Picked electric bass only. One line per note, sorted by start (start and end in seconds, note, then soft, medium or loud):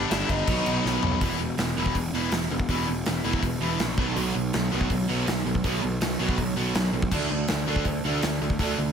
0.11 0.22 G1 medium
0.29 0.40 G1 loud
0.48 0.59 B1 loud
0.67 0.78 B1 medium
0.85 0.96 B1 medium
1.03 1.14 B1 medium
1.22 1.36 E1 medium
1.39 1.54 E1 medium
1.58 1.72 E1 medium
1.77 1.91 E1 medium
1.95 2.10 E1 loud
2.14 2.28 E1 medium
2.32 2.46 E1 medium
2.50 2.65 E1 medium
2.69 2.83 E1 loud
2.88 3.02 E1 medium
3.06 3.21 E1 medium
3.24 3.39 E1 medium
3.43 3.57 E1 medium
3.61 3.75 E1 medium
3.80 3.94 A#1 medium
3.98 4.12 B1 medium
4.16 4.31 B1 loud
4.35 4.50 B1 medium
4.54 4.68 B1 medium
4.73 4.87 B1 medium
4.90 5.05 B1 medium
5.09 5.24 B1 medium
5.28 5.42 B1 medium
5.46 5.60 B1 loud
5.64 5.79 B1 medium
5.83 5.98 B1 medium
6.01 6.16 B1 medium
6.20 6.34 B1 medium
6.38 6.53 B1 medium
6.57 6.71 B1 medium
6.75 6.89 B1 medium
6.93 7.08 B1 medium
7.12 7.26 D2 loud
7.30 7.45 D2 medium
7.49 7.64 D2 medium
7.68 7.82 D2 medium
7.85 8.00 D2 medium
8.05 8.19 D2 medium
8.23 8.38 D2 medium
8.41 8.56 D2 loud
8.59 8.74 D2 medium
8.78 8.92 D2 medium